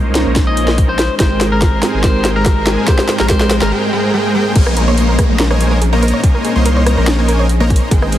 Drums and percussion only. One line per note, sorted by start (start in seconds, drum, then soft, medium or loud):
0.15 snare medium
0.15 closed hi-hat medium
0.36 kick loud
0.36 snare medium
0.36 closed hi-hat medium
0.57 closed hi-hat medium
0.68 snare medium
0.78 kick medium
0.78 closed hi-hat medium
0.99 snare medium
0.99 closed hi-hat medium
1.20 kick loud
1.20 snare medium
1.20 closed hi-hat medium
1.41 snare medium
1.41 closed hi-hat medium
1.62 kick medium
1.62 snare medium
1.62 closed hi-hat medium
1.83 snare medium
1.83 closed hi-hat medium
2.04 kick medium
2.04 snare medium
2.04 closed hi-hat medium
2.25 snare medium
2.25 closed hi-hat medium
2.46 kick loud
2.46 snare medium
2.46 closed hi-hat medium
2.67 snare medium
2.67 closed hi-hat medium
2.88 kick loud
2.88 snare medium
2.88 closed hi-hat medium
2.99 snare medium
3.09 snare medium
3.09 closed hi-hat medium
3.20 snare medium
3.30 kick loud
3.30 snare loud
3.30 closed hi-hat medium
3.41 snare medium
3.51 snare loud
3.51 closed hi-hat medium
3.62 snare medium
4.56 kick loud
4.56 closed hi-hat medium
4.56 crash loud
4.67 cross-stick medium
4.77 closed hi-hat medium
4.98 closed hi-hat medium
5.19 kick loud
5.19 cross-stick medium
5.19 closed hi-hat medium
5.40 snare loud
5.40 closed hi-hat medium
5.51 cross-stick medium
5.61 closed hi-hat medium
5.82 closed hi-hat medium
6.03 closed hi-hat soft
6.08 closed hi-hat medium
6.24 kick loud
6.24 closed hi-hat medium
6.45 closed hi-hat medium
6.66 closed hi-hat medium
6.86 cross-stick medium
6.86 closed hi-hat medium
7.07 snare loud
7.07 closed hi-hat medium
7.28 closed hi-hat medium
7.49 closed hi-hat medium
7.70 kick loud
7.70 closed hi-hat medium
7.76 closed hi-hat medium
7.91 kick loud
7.91 closed hi-hat medium
8.02 cross-stick medium
8.12 closed hi-hat medium